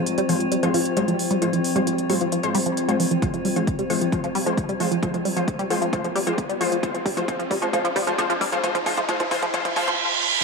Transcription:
Already playing: F3 C4
0.06 closed hi-hat
0.18 G3, closed hi-hat
0.29 F3 G#3 F4 C5, open hi-hat
0.40 closed hi-hat
0.52 G3, closed hi-hat
0.63 F3 G#3 F4 C5, closed hi-hat
0.74 F3, open hi-hat
0.86 closed hi-hat
0.97 G3 G#3 F4 C5, closed hi-hat
1.08 F3, closed hi-hat
1.19 open hi-hat
1.31 G3, closed hi-hat
1.42 F3 G#3 F4 C5, closed hi-hat
1.53 F3, closed hi-hat
1.64 open hi-hat
1.76 G3 G#3 F4 C5, closed hi-hat
1.87 F3, closed hi-hat
1.98 closed hi-hat
2.10 G3 G#3 F4 C5, open hi-hat
2.21 F3, closed hi-hat
2.32 F3, closed hi-hat
2.43 G#3 F4 C5, closed hi-hat
2.55 G3, open hi-hat
2.66 F3, closed hi-hat
2.77 closed hi-hat
2.88 G3 G#3 F4 C5, closed hi-hat
3.00 F3, open hi-hat
3.11 F3, closed hi-hat
3.22 F3 G#3 F4 C5, kick, closed hi-hat, riser
3.34 F3, closed hi-hat
3.45 G3, open hi-hat
3.56 F3 G#3 F4 C5, closed hi-hat
3.67 kick, closed hi-hat
3.79 G3, closed hi-hat
3.90 F3 G#3 F4 C5, open hi-hat
4.01 F3, closed hi-hat
4.12 F3 G#3 F4 C5, kick, closed hi-hat
4.24 F3, closed hi-hat
4.35 G3, open hi-hat
4.46 F3 G#3 F4 C5, closed hi-hat
4.58 kick, closed hi-hat
4.69 G3, closed hi-hat
4.80 F3 G#3 F4 C5, open hi-hat
4.92 F3, closed hi-hat
5.03 F3 G#3 F4 C5, kick, closed hi-hat
5.14 F3, closed hi-hat
5.25 G3, open hi-hat
5.37 F3 G#3 F4 C5, closed hi-hat
5.48 kick, closed hi-hat
5.59 G3, closed hi-hat
5.70 F3 G#3 F4 C5, open hi-hat
5.82 F3, closed hi-hat
5.93 F3 G#3 F4 C5, kick, closed hi-hat
6.04 F3, closed hi-hat
6.16 G3, open hi-hat
6.27 F3 G#3 F4 C5, closed hi-hat
6.38 kick, closed hi-hat
6.49 G3, closed hi-hat
6.60 F3 G#3 F4 C5, open hi-hat
6.72 F3, closed hi-hat
6.83 F3 G#3 F4 C5, kick, closed hi-hat
6.94 F3, closed hi-hat
7.05 G3, kick, open hi-hat
7.17 F3 G#3 F4 C5, closed hi-hat
7.28 F3 G#3 F4 C5, kick, closed hi-hat
7.39 F3, closed hi-hat
7.51 G3, kick, open hi-hat
7.62 F3 G#3 F4 C5, closed hi-hat
7.73 F3 G#3 F4 C5, kick, closed hi-hat
7.84 F3, closed hi-hat
7.96 G3, kick, open hi-hat
8.07 F3 G#3 F4 C5, closed hi-hat
8.18 F3 G#3 F4 C5, kick, closed hi-hat
8.30 F3, closed hi-hat
8.41 G3, kick, open hi-hat
8.52 F3 G#3 F4 C5, closed hi-hat
8.63 F3 G#3 F4 C5, kick, closed hi-hat
8.75 F3, kick, closed hi-hat
8.86 F3 G#3 F4 C5, kick, open hi-hat
8.97 F3, kick, closed hi-hat
9.09 F3 G#3 F4 C5, kick, closed hi-hat
9.20 F3, kick, closed hi-hat
9.31 F3 G#3 F4 C5, kick, open hi-hat
9.43 F3, kick, closed hi-hat
9.54 F3 G#3 F4 C5, kick, closed hi-hat, reverse cymbal
9.65 F3, kick, closed hi-hat
9.76 F3 G#3 F4 C5, kick, open hi-hat
9.88 F3, kick, closed hi-hat

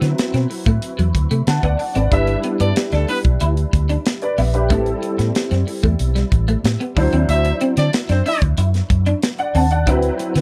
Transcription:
Already playing: F#3 C4 E4 B4
0.01 D3 B3, snare, closed hi-hat
0.18 snare, closed hi-hat
0.34 B2 C4, snare, closed hi-hat
0.50 muted clean electric guitar stroke, open hi-hat
0.66 A2 A3, kick, closed hi-hat
0.82 closed hi-hat
0.99 E2 F#3, closed hi-hat
1.14 D2, muted clean electric guitar stroke, kick, closed hi-hat
1.31 C3 A3, closed hi-hat
1.47 D3 F#5 A5, snare, closed hi-hat
1.63 D2 B3 D5 F#5, kick, closed hi-hat
1.79 muted clean electric guitar stroke, open hi-hat
1.95 G#1 C4 B4 D5, closed hi-hat
2.11 G1 G3 D4 E4 B4 E5, kick, closed hi-hat
2.27 muted clean electric guitar stroke, closed hi-hat
2.43 B3, closed hi-hat
2.60 G2 B3 D4 D5, closed hi-hat
2.76 muted clean electric guitar stroke, snare, closed hi-hat
2.92 D2 A3 D4 A4, snare, closed hi-hat
3.08 B3 D4 B4, open hi-hat
3.24 B1, kick, closed hi-hat
3.40 D2 E4, closed hi-hat
3.57 closed hi-hat
3.73 D2, muted clean electric guitar stroke, kick, closed hi-hat
3.89 D4, closed hi-hat
4.06 snare, closed hi-hat
4.22 B4 D5, closed hi-hat
4.38 A#1 B3 E5, open hi-hat
4.54 G4 B4, closed hi-hat
4.69 A1 G3 A3 C4 E4 A4, kick, closed hi-hat
4.86 closed hi-hat
5.02 muted clean electric guitar stroke, closed hi-hat
5.18 A2 B3, snare, closed hi-hat
5.35 snare, closed hi-hat
5.51 F#2 C4, snare, closed hi-hat
5.67 muted clean electric guitar stroke, open hi-hat
5.83 E2 A3, kick
5.99 B1, closed hi-hat
6.15 G3, snare, closed hi-hat
6.32 A1, muted clean electric guitar stroke, kick, closed hi-hat
6.48 A3, closed hi-hat
6.64 A2, snare, closed hi-hat
6.80 B3, closed hi-hat
6.96 D2 F#3 D4 E4 C5, muted clean electric guitar stroke, kick, open hi-hat
7.13 D#2 C4, closed hi-hat
7.29 D2 E4 E5, closed hi-hat
7.45 muted clean electric guitar stroke, closed hi-hat
7.61 C4, closed hi-hat
7.77 D3 C4 D4 D5, snare, closed hi-hat
7.93 muted clean electric guitar stroke, snare, closed hi-hat
8.09 F#2 C4 D4 C5, snare, closed hi-hat
8.26 D4 E4 E5, open hi-hat
8.42 D2, kick, closed hi-hat
8.57 F#2 E4, closed hi-hat
8.74 snare, closed hi-hat
8.90 F#2, muted clean electric guitar stroke, kick, closed hi-hat
9.06 D4, closed hi-hat
9.22 snare, closed hi-hat
9.38 D5 F#5, closed hi-hat
9.55 D#2 C4 F#5 A5, open hi-hat
9.71 D5 F#5, closed hi-hat
9.86 D2 F#3 C4 D4 E4 B4, kick, closed hi-hat
10.03 closed hi-hat
10.19 muted clean electric guitar stroke, closed hi-hat
10.35 D3 B3, snare, closed hi-hat

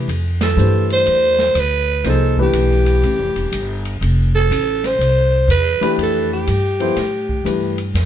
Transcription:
0.08 F2, ride
0.41 A4, snare, ride
0.57 G2 E3 A3 D4 G4 C5, hi-hat pedal
0.90 C5, ride
1.06 E2, ride
1.39 snare
1.55 D2, hi-hat pedal, ride
1.60 B4
2.04 C2 F3 A#3 D#4 G#4 C5, snare, ride
2.09 A4
2.37 E3 A3 D4 G4 B4, kick
2.43 G4
2.53 B1, hi-hat pedal, ride
2.86 ride
3.03 A1, ride
3.19 F1
3.36 E1, ride
3.52 G1, hi-hat pedal, ride
3.85 ride
4.01 F1, ride
4.35 A4
4.50 A1, hi-hat pedal, ride
4.84 C5, snare, ride
4.99 C2, ride
5.48 E2 B4, hi-hat pedal, ride
5.80 E3 A3 D4 G4 B4, muted upright bass stroke, ride
5.98 F2, ride
6.02 A4
6.33 G4
6.47 G2, hi-hat pedal, ride
6.80 F3 B3 E4 A4 C5, ride
6.96 A2, snare, ride
7.29 kick
7.45 G2 E3 A3 D4 G4 B4, hi-hat pedal, ride
7.78 ride
7.94 F2, snare, ride

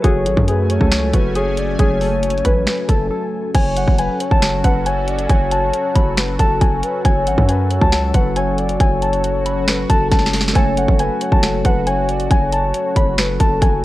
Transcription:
Already playing: F#3 B4
0.02 F#1 A3 C#4 F#4 G#4 C#5 G#5, kick, closed hi-hat
0.26 G#1 F#4, closed hi-hat
0.37 F#2, kick
0.48 G#4 B4, closed hi-hat
0.70 C#5, closed hi-hat
0.81 C#2 A4, kick
0.92 finger snap, snare, closed hi-hat
1.14 F#1 F#4 B4, kick, closed hi-hat
1.36 G#4 C#5, closed hi-hat
1.57 D5, closed hi-hat
1.79 F#1 G#4 C#5, kick, closed hi-hat
2.01 A4, open hi-hat
2.23 closed hi-hat
2.30 closed hi-hat
2.38 closed hi-hat
2.45 A1 B4, kick, closed hi-hat
2.67 B4, finger snap, snare, closed hi-hat
2.88 F#1 A4, kick, closed hi-hat
3.10 A4
3.54 F#1 F#3 C#4 F#4 A4 C#5 G#5, kick, closed hi-hat, crash
3.76 F#5, closed hi-hat
3.87 F#1, kick
3.98 B4 G#5, closed hi-hat
4.20 C#5, closed hi-hat
4.31 F#1 A5, kick
4.42 finger snap, snare, closed hi-hat
4.64 F#1 B4 F#5, kick, closed hi-hat
4.86 C#5 G#5, closed hi-hat
5.08 D5, closed hi-hat
5.19 closed hi-hat
5.30 F#1 C#5 G#5, kick, closed hi-hat
5.52 A5, closed hi-hat
5.74 closed hi-hat
5.95 F#1 B5, kick, closed hi-hat
6.17 B4, finger snap, snare, closed hi-hat
6.39 F#1 A4 A5, kick, closed hi-hat
6.61 F#1 G#5, kick, closed hi-hat
6.83 B4, closed hi-hat
7.05 F#1 C#5 G#5, kick, closed hi-hat
7.27 G#1 F#5, closed hi-hat
7.38 F#2, kick
7.49 B4 G#5, closed hi-hat
7.70 C#5, closed hi-hat
7.81 C#2 A5, kick
7.92 finger snap, snare, closed hi-hat
8.14 F#1 B4 F#5, kick, closed hi-hat
8.36 C#5 G#5, closed hi-hat
8.58 D5, closed hi-hat
8.69 closed hi-hat
8.80 F#1 F#4 C#5 G#5, kick, closed hi-hat
9.02 A5, closed hi-hat
9.13 closed hi-hat
9.24 closed hi-hat
9.46 B5, closed hi-hat
9.68 B4, finger snap, snare, closed hi-hat
9.89 F#1 A4 A5, kick, closed hi-hat
10.11 F#1 A5, kick, snare, closed hi-hat
10.19 snare
10.26 snare
10.33 snare, open hi-hat
10.41 snare
10.48 snare
10.53 F#1 A3 F#4 A4 C#5 G#5, kick, closed hi-hat
10.77 F#5, closed hi-hat
10.88 F#1, kick
10.99 B4 G#5, closed hi-hat
11.21 C#5, closed hi-hat
11.32 F#1 A5, kick
11.43 finger snap, snare, closed hi-hat
11.65 F#1 B4 F#5, kick, closed hi-hat
11.86 C#5 G#5, closed hi-hat
12.09 D5, closed hi-hat
12.20 closed hi-hat
12.30 F#1 C#5 G#5, kick, closed hi-hat
12.52 A5, closed hi-hat
12.74 closed hi-hat
12.96 F#1 B5, kick, closed hi-hat
13.18 B4, finger snap, snare, closed hi-hat
13.40 F#1 A4 A5, kick, closed hi-hat
13.61 F#1 G#5, kick, closed hi-hat

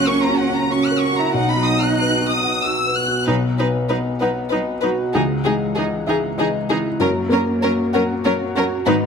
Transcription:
Already playing: C#2 F#3 A#3 C#4 F#4 F#5
0.06 A#4 C#6
0.22 A#5
0.29 F#4
0.39 F#5
0.50 F#5 A#5
0.70 C#4 F#4 C#6
0.85 F#6
0.91 A#4
0.99 C#6
1.13 F#4 A#5
1.19 E4
1.34 B1 B3 D#4 F#5
1.49 B5
1.56 F#3
1.64 D#6
1.78 F#4 F#6
1.96 F#6
2.01 B4
2.22 F#4
2.31 D#6
2.44 F#5
2.62 F#4 E6
2.87 B4
2.95 F#6
3.08 F#4
3.26 B1 F#3 B3 D#4 F#4 B4 F#5
3.58 F#3 B3 D#4 B4
3.89 F#3 D#4 B4 D#5
4.20 F#3 D#4 B4 F#5
4.50 F#3 D#4 B4 D#5
4.81 F#3 D#4 F#4 B4
5.14 C#2 E3 G#3 D#4 G#4
5.44 E3 G#3 D#4 G#4
5.76 E3 D#4 G#4 D#5
6.07 E3 D#4 G#4 E5
6.38 E3 D#4 G#4 D#5
6.69 E3 D#4 E4 G#4
7.00 F#2 F#3 A#3 C#4 F#4 A#4 C#5
7.29 F#3 A#3 C#4 A#4
7.61 F#3 C#4 A#4 C#5
7.93 F#3 C#4 A#4 F#5
8.25 F#3 C#4 A#4 C#5
8.55 F#3 C#4 F#4 A#4
8.86 G#2 D#3 B3 D#4 B4

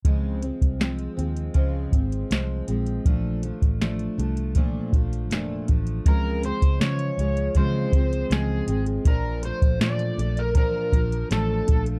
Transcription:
0.05 C#2 C#3 F3 G#3 C4, kick, closed hi-hat
0.42 F3 G#3 C4, closed hi-hat
0.62 C2, kick, closed hi-hat
0.79 F3 G#3 C4, snare, closed hi-hat
0.99 closed hi-hat
1.17 D#2 F3 G#3 C4, closed hi-hat
1.37 closed hi-hat
1.54 C#2 C#3 F3 G#3 C4, kick, closed hi-hat
1.92 G#1 F3 G#3 C4, kick, closed hi-hat
2.12 closed hi-hat
2.30 C2 F3 G#3 C4, snare, closed hi-hat
2.67 A#1 F3 G#3 C4, closed hi-hat
2.86 closed hi-hat
3.05 A#1 A#2 F3 A3 D4, kick, closed hi-hat
3.43 F3 A3 D4, closed hi-hat
3.62 A1, kick, closed hi-hat
3.81 F3 A3 D4, snare, closed hi-hat
3.99 closed hi-hat
4.18 C2 F3 A3 D4, closed hi-hat
4.37 closed hi-hat
4.55 A#2 F3 A3 D4, kick, closed hi-hat
4.92 A#1 F3 A3 D4, kick, closed hi-hat
5.13 closed hi-hat
5.30 F1 A#2 F3 A3 D4, snare, closed hi-hat
5.68 A1 F3 A3 D4, kick, closed hi-hat
5.87 closed hi-hat
6.05 C#2 C#3 F3 G#3 C4 A#4, kick, closed hi-hat
6.43 F3 G#3 C4 C5, closed hi-hat
6.62 C#2, kick, closed hi-hat
6.80 C#3 F3 G#3 C#5, snare, closed hi-hat
6.99 closed hi-hat
7.18 C#2 F3 G#3, closed hi-hat
7.37 closed hi-hat
7.55 C#3 F3 G#3 C4 C5, kick, closed hi-hat
7.93 C#2 F3 G#3 C4, kick, closed hi-hat
8.13 closed hi-hat
8.30 C#2 C#3 F3 G#3 C4 G#4, snare, closed hi-hat
8.67 G#1 F3 G#3 C4, closed hi-hat
8.86 closed hi-hat
9.05 A#1 A#2 F3 D4 A#4, kick, closed hi-hat
9.43 F3 A3 D4 C5, closed hi-hat
9.62 A#1, kick, closed hi-hat
9.80 A#2 F3 A3 D4 D5, snare, closed hi-hat
9.99 closed hi-hat
10.17 A#1 F3 A3 D4, closed hi-hat
10.37 A#4, closed hi-hat
10.55 A#2 F3 D4 A#4, kick, closed hi-hat
10.92 A#1 F3 D4, kick, closed hi-hat
11.12 closed hi-hat
11.30 A1 F3 A3 D4 A4, snare, closed hi-hat
11.67 A#1 F3 A3 D4, kick, closed hi-hat
11.86 closed hi-hat

